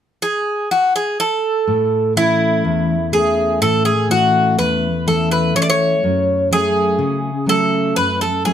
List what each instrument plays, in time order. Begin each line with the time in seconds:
0.22 bouzouki G#4
0.71 bouzouki F#4
0.96 bouzouki G#4
1.20 bouzouki A4
1.67 steel-string acoustic guitar A2
2.16 steel-string acoustic guitar E3 A3 C#4, bouzouki E4
2.64 steel-string acoustic guitar E2
3.12 steel-string acoustic guitar E3 A3 C#4, bouzouki G#4
3.61 steel-string acoustic guitar A2, bouzouki A4
3.85 bouzouki G#4
4.09 steel-string acoustic guitar E3 A3 C#4, bouzouki F#4
4.58 steel-string acoustic guitar E2, bouzouki B4
5.06 steel-string acoustic guitar E3 A3 C#4, bouzouki A4
5.31 bouzouki B4
5.55 steel-string acoustic guitar E3 A3 C#4, bouzouki C#5
5.62 bouzouki D5
5.70 bouzouki C#5
6.03 steel-string acoustic guitar F#2
6.51 steel-string acoustic guitar F#3 A3 C#4, bouzouki G#4
6.99 steel-string acoustic guitar C#3
7.46 steel-string acoustic guitar F#3 A3 C#4, bouzouki A4
7.96 steel-string acoustic guitar F#2, bouzouki B4
8.21 bouzouki A4
8.45 steel-string acoustic guitar F#3 A3 C#4, bouzouki G#4